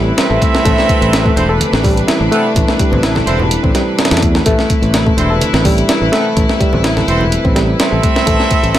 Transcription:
0.00 0.11 A1 loud
0.00 8.79 C3 medium
0.00 8.79 E3 medium
0.00 1.84 G3 loud
0.00 0.41 A3 loud
0.00 1.73 C4 medium
0.00 0.64 E4 medium
0.00 2.08 E4 loud
0.00 0.30 A4 medium
0.00 8.79 B4 medium
0.17 1.34 C4 loud
0.17 1.34 E4 medium
0.17 1.34 A4 loud
0.17 1.34 E5 loud
0.17 snare loud
0.17 closed hi-hat medium
0.30 0.37 A1 medium
0.30 0.40 A4 medium
0.41 0.64 A3 medium
0.41 kick loud
0.41 closed hi-hat medium
0.55 snare medium
0.65 0.73 A1 loud
0.65 1.12 A3 loud
0.65 4.45 D4 medium
0.65 kick loud
0.65 closed hi-hat medium
0.78 snare soft
0.89 kick loud
0.89 closed hi-hat medium
1.01 1.30 A1 medium
1.01 closed hi-hat soft
1.13 snare loud
1.13 closed hi-hat medium
1.25 1.36 A3 medium
1.25 kick loud
1.36 1.60 E1 medium
1.36 1.51 C4 medium
1.36 1.49 D4 medium
1.36 1.51 E4 medium
1.36 1.51 A4 medium
1.36 1.51 C5 medium
1.36 closed hi-hat medium
1.49 1.60 A4 loud
1.60 muted fingered electric bass stroke soft
1.60 closed hi-hat medium
1.60 high conga medium
1.73 2.01 A1 loud
1.73 1.83 C4 medium
1.73 snare medium
1.84 1.91 G3 loud
1.84 kick loud
1.84 open hi-hat medium
1.84 high conga medium
1.97 closed hi-hat soft
2.08 2.19 E4 loud
2.08 snare loud
2.08 closed hi-hat medium
2.20 2.27 A1 medium
2.20 2.30 A3 medium
2.31 2.43 A3 loud
2.31 2.47 B3 loud
2.31 2.47 C4 medium
2.31 2.47 E4 medium
2.31 2.47 A4 medium
2.31 2.47 B4 loud
2.31 closed hi-hat medium
2.56 2.64 A1 loud
2.56 kick loud
2.56 closed hi-hat medium
2.68 snare soft
2.79 2.86 G3 medium
2.79 kick loud
2.79 closed hi-hat medium
2.92 3.20 A1 medium
2.92 3.02 C4 medium
2.92 high conga medium
3.03 3.14 E4 loud
3.03 snare loud
3.03 closed hi-hat medium
3.15 3.26 A4 medium
3.15 snare soft
3.15 high conga medium
3.27 3.56 E1 medium
3.27 3.42 C4 medium
3.27 3.42 E4 medium
3.27 3.42 A4 medium
3.27 3.42 C5 loud
3.27 closed hi-hat medium
3.40 low conga medium
3.51 closed hi-hat medium
3.63 3.71 A1 medium
3.63 3.73 C4 medium
3.63 kick loud
3.75 3.81 G3 medium
3.75 snare soft
3.75 closed hi-hat medium
3.99 snare medium
3.99 closed hi-hat medium
4.05 snare medium
4.05 closed hi-hat medium
4.11 4.39 E2 loud
4.11 4.21 A4 medium
4.11 snare medium
4.11 closed hi-hat medium
4.17 snare medium
4.17 closed hi-hat medium
4.22 4.45 A3 medium
4.22 kick loud
4.22 closed hi-hat medium
4.35 snare medium
4.46 4.54 A1 loud
4.46 4.93 A3 loud
4.46 8.26 E4 medium
4.46 kick loud
4.46 closed hi-hat medium
4.59 snare soft
4.70 kick loud
4.70 closed hi-hat medium
4.82 5.10 A1 medium
4.82 closed hi-hat soft
4.94 snare loud
4.94 closed hi-hat medium
5.06 5.17 A3 medium
5.06 kick loud
5.17 5.40 E1 medium
5.17 5.32 C4 medium
5.17 5.30 D4 medium
5.17 5.32 E4 medium
5.17 5.32 A4 medium
5.17 5.32 C5 medium
5.17 closed hi-hat medium
5.30 5.41 A4 loud
5.41 muted fingered electric bass stroke soft
5.41 closed hi-hat medium
5.41 high conga medium
5.53 5.82 A1 loud
5.53 5.64 C4 medium
5.53 snare medium
5.65 5.72 G3 loud
5.65 kick loud
5.65 open hi-hat medium
5.65 high conga medium
5.78 closed hi-hat soft
5.89 6.00 E4 loud
5.89 snare loud
5.89 closed hi-hat medium
6.01 6.08 A1 medium
6.01 6.11 A3 medium
6.12 6.24 A3 loud
6.12 6.28 B3 medium
6.12 6.28 C4 medium
6.12 6.28 E4 medium
6.12 6.28 A4 medium
6.12 6.28 B4 loud
6.12 snare loud
6.12 closed hi-hat medium
6.37 6.44 A1 loud
6.37 kick loud
6.37 closed hi-hat medium
6.49 snare soft
6.60 6.67 G3 medium
6.60 kick loud
6.60 closed hi-hat medium
6.73 7.01 A1 medium
6.73 6.83 C4 medium
6.73 high conga medium
6.84 6.95 E4 loud
6.84 snare loud
6.84 closed hi-hat medium
6.97 7.07 A4 medium
6.97 snare soft
6.97 high conga medium
7.08 7.37 E1 medium
7.08 7.23 C4 medium
7.08 7.23 E4 medium
7.08 7.23 A4 medium
7.08 7.23 C5 loud
7.08 closed hi-hat medium
7.21 low conga medium
7.32 closed hi-hat medium
7.44 7.73 A1 loud
7.44 7.54 C4 medium
7.44 kick loud
7.55 7.62 G3 medium
7.55 snare soft
7.55 closed hi-hat medium
7.79 8.79 C4 loud
7.79 8.79 E4 medium
7.79 8.79 A4 loud
7.79 8.79 E5 loud
7.79 snare loud
7.79 closed hi-hat medium
7.92 7.99 A1 medium
7.92 8.02 A4 medium
8.03 8.25 A3 medium
8.03 kick loud
8.03 closed hi-hat medium
8.16 snare medium
8.26 8.35 A1 loud
8.26 8.73 A3 loud
8.26 8.79 A4 medium
8.26 kick loud
8.26 closed hi-hat medium
8.40 snare soft
8.51 kick loud
8.51 closed hi-hat medium
8.63 8.79 A1 medium
8.63 closed hi-hat soft
8.75 snare loud
8.75 closed hi-hat medium

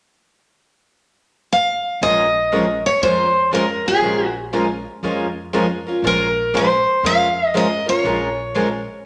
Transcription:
1.53 2.02 F5 medium
2.01 2.82 A#1 medium
2.01 2.24 F3 medium
2.01 2.24 G#3 medium
2.01 2.24 C#4 medium
2.01 2.25 F4 medium
2.01 2.25 A#4 medium
2.01 2.86 D#5 medium
2.52 2.64 F3 medium
2.52 2.64 G#3 medium
2.52 2.64 C#4 medium
2.52 2.64 F4 medium
2.52 2.64 A#4 medium
2.86 3.02 C#5 medium
3.01 3.82 F2 medium
3.01 3.24 F3 medium
3.01 3.24 G#3 medium
3.01 3.25 C#4 medium
3.01 3.25 F4 medium
3.01 3.25 A#4 medium
3.01 3.49 C5 medium
3.53 3.64 F3 medium
3.53 3.64 G#3 medium
3.53 3.65 C#4 medium
3.53 3.65 F4 medium
3.53 3.65 A#4 medium
3.53 3.87 A#4 medium
3.86 4.03 C#4 soft
3.86 4.03 F4 soft
3.86 4.33 G#4 medium
3.86 4.02 A#4 medium
4.02 4.83 A#1 medium
4.02 4.25 F3 medium
4.02 4.25 G#3 medium
4.02 4.26 C#4 medium
4.02 4.26 F4 medium
4.02 4.26 A#4 medium
4.53 4.65 F3 medium
4.53 4.65 G#3 medium
4.53 4.65 C#4 medium
4.53 4.65 F4 medium
4.53 4.65 A#4 medium
5.03 5.83 F2 medium
5.03 5.26 F3 medium
5.03 5.26 G#3 medium
5.03 5.26 C#4 medium
5.03 5.26 F4 medium
5.03 5.26 A#4 medium
5.53 5.65 F3 medium
5.53 5.65 G#3 medium
5.53 5.65 C#4 medium
5.53 5.66 F4 medium
5.53 5.66 A#4 medium
5.87 6.03 C#4 soft
5.87 6.04 F4 medium
5.87 6.03 A#4 medium
6.02 6.83 A#1 medium
6.02 6.26 F3 medium
6.02 6.26 G#3 medium
6.02 6.26 C#4 medium
6.02 6.27 F4 medium
6.02 6.27 A#4 medium
6.07 6.57 A#4 medium
6.54 6.66 F3 medium
6.54 6.66 G#3 medium
6.54 6.66 C#4 medium
6.54 6.66 F4 medium
6.54 6.66 A#4 medium
6.54 7.06 C5 medium
7.03 7.84 F2 medium
7.03 7.26 F3 medium
7.03 7.27 G#3 medium
7.03 7.27 C#4 medium
7.03 7.27 F4 medium
7.03 7.27 A#4 medium
7.03 7.57 F5 loud
7.54 7.66 F3 medium
7.54 7.66 G#3 medium
7.54 7.66 C#4 medium
7.54 7.67 F4 medium
7.54 7.67 A#4 medium
7.54 7.86 D#5 medium
7.86 8.04 C#4 soft
7.86 8.04 F4 medium
7.86 8.03 A#4 medium
7.86 9.05 C#5 medium
8.04 8.85 A#1 medium
8.04 8.27 F3 medium
8.04 8.27 G#3 medium
8.04 8.27 C#4 medium
8.04 8.27 F4 medium
8.04 8.28 A#4 medium
8.55 8.67 F3 medium
8.55 8.67 G#3 medium
8.55 8.67 C#4 medium
8.55 8.67 F4 medium
8.55 8.67 A#4 medium

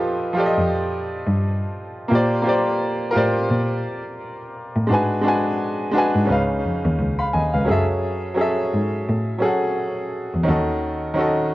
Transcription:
0.00 0.53 F2 medium
0.00 0.33 F3 medium
0.00 0.35 F4 medium
0.00 0.36 G4 medium
0.00 0.38 A4 medium
0.00 0.30 B4 loud
0.00 0.46 D#5 medium
0.33 1.58 F3 medium
0.33 1.59 F4 medium
0.33 1.60 G4 medium
0.38 1.61 A4 medium
0.38 0.46 D5 medium
0.46 1.65 D#5 loud
0.58 1.18 F2 medium
1.27 1.39 G2 loud
2.08 3.12 A#2 loud
2.08 2.40 A#3 medium
2.08 2.41 F4 medium
2.08 2.42 G4 medium
2.14 2.43 C5 medium
2.14 2.44 D5 loud
2.42 3.06 A#3 medium
2.42 3.07 F4 medium
2.42 3.07 G4 medium
2.47 3.08 C5 medium
2.47 3.09 D5 medium
3.11 4.37 F4 medium
3.11 4.38 G4 medium
3.11 4.37 A#4 medium
3.16 3.46 A2 medium
3.16 4.39 C5 medium
3.16 4.40 D5 medium
3.51 3.81 A#2 medium
4.76 4.88 A2 medium
4.87 6.11 G#2 loud
4.87 5.19 G#3 medium
4.87 5.20 D4 medium
4.87 5.21 F#4 medium
4.92 5.22 B4 medium
4.92 5.23 G#5 medium
5.21 5.85 G#3 medium
5.21 5.86 D4 medium
5.21 5.87 F#4 medium
5.27 5.88 B4 medium
5.27 5.88 G#5 medium
5.92 6.28 G#3 medium
5.92 6.29 D4 medium
5.92 6.29 F#4 medium
5.97 6.29 B4 medium
5.97 6.31 G#5 loud
6.15 6.27 G#2 loud
6.25 7.51 C#3 medium
6.25 7.51 C#4 medium
6.25 7.52 D#4 medium
6.30 6.60 C#2 loud
6.30 6.65 B4 medium
6.30 6.66 F5 medium
6.65 6.82 F2 medium
6.85 6.97 D#2 loud
6.99 7.17 C#2 medium
7.19 7.33 F5 soft
7.19 7.33 B5 medium
7.34 7.52 D#2 medium
7.34 7.54 D#5 medium
7.34 7.53 G#5 medium
7.54 7.67 C#2 medium
7.54 7.88 B4 soft
7.54 7.87 F5 medium
7.65 8.29 F#3 medium
7.65 8.30 C#4 medium
7.65 8.30 G#4 medium
7.69 8.70 F#2 medium
7.69 8.31 A4 medium
7.69 8.32 E5 medium
8.34 9.29 F#3 medium
8.34 9.30 C#4 medium
8.34 9.31 G#4 medium
8.39 9.32 A4 medium
8.39 9.33 E5 medium
8.74 9.04 G#2 medium
9.09 9.39 A2 medium
9.38 10.34 F#3 medium
9.38 10.35 C#4 medium
9.38 10.35 G#4 medium
9.43 10.36 A4 medium
9.43 10.37 F#5 medium
10.34 10.46 E2 medium
10.43 11.07 D#3 medium
10.43 11.08 C#4 medium
10.43 11.09 F#4 medium
10.48 11.54 D#2 loud
10.48 11.10 A4 medium
10.48 11.11 D#5 medium
11.14 11.54 D#3 medium
11.14 11.54 C#4 medium
11.14 11.54 F#4 medium
11.19 11.54 A4 medium
11.19 11.54 D#5 medium

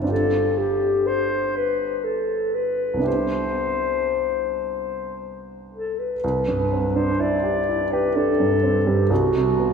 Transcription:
0.00 2.97 G1 soft
0.00 2.98 C4 soft
0.00 2.98 D4 soft
0.06 3.00 F4 soft
0.06 3.01 G4 soft
0.12 0.59 A4 soft
0.58 1.08 G4 soft
1.07 1.58 C5 soft
1.56 2.06 B4 soft
2.04 2.56 A4 soft
2.55 3.07 B4 soft
2.94 6.13 C2 soft
2.94 6.14 B3 soft
2.99 6.15 D4 soft
2.99 6.17 E4 soft
3.04 6.18 G4 soft
3.04 5.16 C5 soft
5.74 6.01 A4 soft
5.99 6.98 B4 soft
6.24 9.07 C2 soft
6.48 6.86 G2 soft
6.73 7.11 C4 soft
6.96 7.35 D4 soft
6.96 7.22 C5 soft
7.20 7.58 E4 soft
7.20 7.93 D5 medium
7.43 7.82 G4 soft
7.69 8.07 E4 soft
7.92 8.31 G4 soft
7.92 8.17 B4 medium
8.16 8.54 D4 soft
8.16 8.89 A4 medium
8.40 8.78 G2 soft
8.63 9.01 C4 soft
8.87 9.11 G2 soft
8.87 9.11 G4 soft
9.10 9.73 C2 soft
9.10 9.73 F#4 medium
9.36 9.73 C3 soft
9.59 9.73 B3 soft

